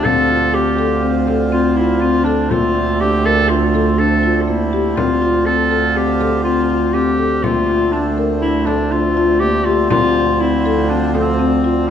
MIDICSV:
0, 0, Header, 1, 6, 480
1, 0, Start_track
1, 0, Key_signature, -1, "minor"
1, 0, Tempo, 493421
1, 44, Time_signature, 5, 2, 24, 8
1, 11578, End_track
2, 0, Start_track
2, 0, Title_t, "Clarinet"
2, 0, Program_c, 0, 71
2, 41, Note_on_c, 0, 69, 119
2, 525, Note_on_c, 0, 67, 100
2, 540, Note_off_c, 0, 69, 0
2, 1220, Note_off_c, 0, 67, 0
2, 1471, Note_on_c, 0, 65, 94
2, 1713, Note_on_c, 0, 64, 89
2, 1728, Note_off_c, 0, 65, 0
2, 1942, Note_on_c, 0, 65, 98
2, 1957, Note_off_c, 0, 64, 0
2, 2180, Note_on_c, 0, 62, 93
2, 2194, Note_off_c, 0, 65, 0
2, 2436, Note_on_c, 0, 65, 113
2, 2450, Note_off_c, 0, 62, 0
2, 2926, Note_on_c, 0, 67, 97
2, 2940, Note_off_c, 0, 65, 0
2, 3166, Note_on_c, 0, 69, 106
2, 3181, Note_off_c, 0, 67, 0
2, 3393, Note_on_c, 0, 65, 91
2, 3408, Note_off_c, 0, 69, 0
2, 3875, Note_on_c, 0, 69, 106
2, 3890, Note_off_c, 0, 65, 0
2, 4291, Note_on_c, 0, 65, 60
2, 4306, Note_off_c, 0, 69, 0
2, 4361, Note_on_c, 0, 64, 87
2, 4375, Note_off_c, 0, 65, 0
2, 4827, Note_on_c, 0, 65, 103
2, 4841, Note_off_c, 0, 64, 0
2, 5308, Note_on_c, 0, 69, 101
2, 5322, Note_off_c, 0, 65, 0
2, 5804, Note_on_c, 0, 67, 85
2, 5818, Note_off_c, 0, 69, 0
2, 6261, Note_off_c, 0, 67, 0
2, 6267, Note_on_c, 0, 65, 92
2, 6745, Note_on_c, 0, 67, 100
2, 6760, Note_off_c, 0, 65, 0
2, 7230, Note_on_c, 0, 65, 107
2, 7245, Note_off_c, 0, 67, 0
2, 7705, Note_on_c, 0, 62, 85
2, 7720, Note_off_c, 0, 65, 0
2, 7953, Note_off_c, 0, 62, 0
2, 8187, Note_on_c, 0, 64, 97
2, 8422, Note_on_c, 0, 62, 92
2, 8437, Note_off_c, 0, 64, 0
2, 8675, Note_on_c, 0, 65, 96
2, 8690, Note_off_c, 0, 62, 0
2, 9143, Note_on_c, 0, 67, 109
2, 9157, Note_off_c, 0, 65, 0
2, 9387, Note_on_c, 0, 65, 98
2, 9401, Note_off_c, 0, 67, 0
2, 9627, Note_off_c, 0, 65, 0
2, 9632, Note_on_c, 0, 65, 117
2, 10116, Note_on_c, 0, 64, 98
2, 10130, Note_off_c, 0, 65, 0
2, 10596, Note_on_c, 0, 62, 93
2, 10611, Note_off_c, 0, 64, 0
2, 10820, Note_off_c, 0, 62, 0
2, 10826, Note_on_c, 0, 60, 90
2, 11570, Note_off_c, 0, 60, 0
2, 11578, End_track
3, 0, Start_track
3, 0, Title_t, "Marimba"
3, 0, Program_c, 1, 12
3, 45, Note_on_c, 1, 60, 88
3, 211, Note_off_c, 1, 60, 0
3, 284, Note_on_c, 1, 65, 64
3, 450, Note_off_c, 1, 65, 0
3, 528, Note_on_c, 1, 60, 69
3, 693, Note_off_c, 1, 60, 0
3, 765, Note_on_c, 1, 69, 86
3, 931, Note_off_c, 1, 69, 0
3, 1002, Note_on_c, 1, 60, 74
3, 1169, Note_off_c, 1, 60, 0
3, 1249, Note_on_c, 1, 69, 82
3, 1413, Note_off_c, 1, 69, 0
3, 1482, Note_on_c, 1, 60, 90
3, 1649, Note_off_c, 1, 60, 0
3, 1725, Note_on_c, 1, 65, 83
3, 1891, Note_off_c, 1, 65, 0
3, 1966, Note_on_c, 1, 60, 87
3, 2131, Note_off_c, 1, 60, 0
3, 2201, Note_on_c, 1, 69, 80
3, 2368, Note_off_c, 1, 69, 0
3, 2450, Note_on_c, 1, 58, 85
3, 2613, Note_off_c, 1, 58, 0
3, 2686, Note_on_c, 1, 65, 65
3, 2851, Note_off_c, 1, 65, 0
3, 2925, Note_on_c, 1, 62, 67
3, 3090, Note_off_c, 1, 62, 0
3, 3158, Note_on_c, 1, 70, 74
3, 3326, Note_off_c, 1, 70, 0
3, 3402, Note_on_c, 1, 62, 75
3, 3568, Note_off_c, 1, 62, 0
3, 3646, Note_on_c, 1, 69, 80
3, 3811, Note_off_c, 1, 69, 0
3, 3878, Note_on_c, 1, 62, 87
3, 4046, Note_off_c, 1, 62, 0
3, 4117, Note_on_c, 1, 65, 83
3, 4285, Note_off_c, 1, 65, 0
3, 4354, Note_on_c, 1, 58, 81
3, 4523, Note_off_c, 1, 58, 0
3, 4601, Note_on_c, 1, 67, 83
3, 4768, Note_off_c, 1, 67, 0
3, 4838, Note_on_c, 1, 60, 87
3, 5005, Note_off_c, 1, 60, 0
3, 5077, Note_on_c, 1, 65, 79
3, 5245, Note_off_c, 1, 65, 0
3, 5318, Note_on_c, 1, 60, 67
3, 5485, Note_off_c, 1, 60, 0
3, 5556, Note_on_c, 1, 69, 85
3, 5724, Note_off_c, 1, 69, 0
3, 5794, Note_on_c, 1, 60, 69
3, 5963, Note_off_c, 1, 60, 0
3, 6036, Note_on_c, 1, 69, 78
3, 6205, Note_off_c, 1, 69, 0
3, 6276, Note_on_c, 1, 60, 86
3, 6444, Note_off_c, 1, 60, 0
3, 6513, Note_on_c, 1, 65, 75
3, 6683, Note_off_c, 1, 65, 0
3, 6752, Note_on_c, 1, 60, 75
3, 6921, Note_off_c, 1, 60, 0
3, 6987, Note_on_c, 1, 69, 76
3, 7158, Note_off_c, 1, 69, 0
3, 7237, Note_on_c, 1, 58, 81
3, 7405, Note_off_c, 1, 58, 0
3, 7479, Note_on_c, 1, 65, 71
3, 7646, Note_off_c, 1, 65, 0
3, 7717, Note_on_c, 1, 62, 86
3, 7885, Note_off_c, 1, 62, 0
3, 7954, Note_on_c, 1, 70, 79
3, 8123, Note_off_c, 1, 70, 0
3, 8197, Note_on_c, 1, 62, 78
3, 8365, Note_off_c, 1, 62, 0
3, 8433, Note_on_c, 1, 69, 78
3, 8602, Note_off_c, 1, 69, 0
3, 8678, Note_on_c, 1, 62, 81
3, 8845, Note_off_c, 1, 62, 0
3, 8921, Note_on_c, 1, 65, 90
3, 9087, Note_off_c, 1, 65, 0
3, 9158, Note_on_c, 1, 58, 84
3, 9326, Note_off_c, 1, 58, 0
3, 9399, Note_on_c, 1, 67, 85
3, 9566, Note_off_c, 1, 67, 0
3, 9635, Note_on_c, 1, 60, 87
3, 9803, Note_off_c, 1, 60, 0
3, 9877, Note_on_c, 1, 65, 67
3, 10045, Note_off_c, 1, 65, 0
3, 10120, Note_on_c, 1, 60, 80
3, 10287, Note_off_c, 1, 60, 0
3, 10366, Note_on_c, 1, 69, 89
3, 10531, Note_off_c, 1, 69, 0
3, 10604, Note_on_c, 1, 60, 75
3, 10769, Note_off_c, 1, 60, 0
3, 10846, Note_on_c, 1, 69, 88
3, 11011, Note_off_c, 1, 69, 0
3, 11081, Note_on_c, 1, 60, 91
3, 11248, Note_off_c, 1, 60, 0
3, 11326, Note_on_c, 1, 65, 83
3, 11491, Note_off_c, 1, 65, 0
3, 11578, End_track
4, 0, Start_track
4, 0, Title_t, "Harmonium"
4, 0, Program_c, 2, 20
4, 0, Note_on_c, 2, 50, 82
4, 0, Note_on_c, 2, 60, 87
4, 43, Note_on_c, 2, 65, 89
4, 2402, Note_off_c, 2, 50, 0
4, 2417, Note_off_c, 2, 65, 0
4, 2436, Note_on_c, 2, 57, 70
4, 2442, Note_on_c, 2, 50, 78
4, 4814, Note_off_c, 2, 57, 0
4, 4836, Note_on_c, 2, 65, 84
4, 7214, Note_off_c, 2, 65, 0
4, 7228, Note_on_c, 2, 57, 78
4, 9610, Note_off_c, 2, 57, 0
4, 9635, Note_on_c, 2, 53, 97
4, 11578, Note_off_c, 2, 50, 0
4, 11578, Note_off_c, 2, 53, 0
4, 11578, Note_off_c, 2, 60, 0
4, 11578, End_track
5, 0, Start_track
5, 0, Title_t, "Double bass"
5, 0, Program_c, 3, 43
5, 47, Note_on_c, 3, 38, 85
5, 2451, Note_off_c, 3, 38, 0
5, 2451, Note_on_c, 3, 38, 101
5, 4833, Note_off_c, 3, 38, 0
5, 4833, Note_on_c, 3, 38, 82
5, 7236, Note_off_c, 3, 38, 0
5, 7236, Note_on_c, 3, 38, 84
5, 9637, Note_off_c, 3, 38, 0
5, 9637, Note_on_c, 3, 38, 93
5, 11578, Note_off_c, 3, 38, 0
5, 11578, End_track
6, 0, Start_track
6, 0, Title_t, "Frame drum"
6, 47, Note_on_c, 9, 64, 60
6, 145, Note_off_c, 9, 64, 0
6, 1237, Note_on_c, 9, 64, 47
6, 1334, Note_off_c, 9, 64, 0
6, 2201, Note_on_c, 9, 64, 21
6, 2298, Note_off_c, 9, 64, 0
6, 2440, Note_on_c, 9, 64, 63
6, 2538, Note_off_c, 9, 64, 0
6, 3163, Note_on_c, 9, 64, 18
6, 3261, Note_off_c, 9, 64, 0
6, 3638, Note_on_c, 9, 64, 49
6, 3735, Note_off_c, 9, 64, 0
6, 4120, Note_on_c, 9, 64, 21
6, 4217, Note_off_c, 9, 64, 0
6, 4360, Note_on_c, 9, 64, 22
6, 4458, Note_off_c, 9, 64, 0
6, 4838, Note_on_c, 9, 64, 64
6, 4936, Note_off_c, 9, 64, 0
6, 6041, Note_on_c, 9, 64, 55
6, 6139, Note_off_c, 9, 64, 0
6, 6513, Note_on_c, 9, 64, 21
6, 6611, Note_off_c, 9, 64, 0
6, 6988, Note_on_c, 9, 64, 21
6, 7085, Note_off_c, 9, 64, 0
6, 7234, Note_on_c, 9, 64, 62
6, 7331, Note_off_c, 9, 64, 0
6, 8436, Note_on_c, 9, 64, 56
6, 8533, Note_off_c, 9, 64, 0
6, 8917, Note_on_c, 9, 64, 23
6, 9014, Note_off_c, 9, 64, 0
6, 9398, Note_on_c, 9, 64, 23
6, 9495, Note_off_c, 9, 64, 0
6, 9636, Note_on_c, 9, 64, 77
6, 9733, Note_off_c, 9, 64, 0
6, 10841, Note_on_c, 9, 64, 52
6, 10938, Note_off_c, 9, 64, 0
6, 11319, Note_on_c, 9, 64, 26
6, 11417, Note_off_c, 9, 64, 0
6, 11578, End_track
0, 0, End_of_file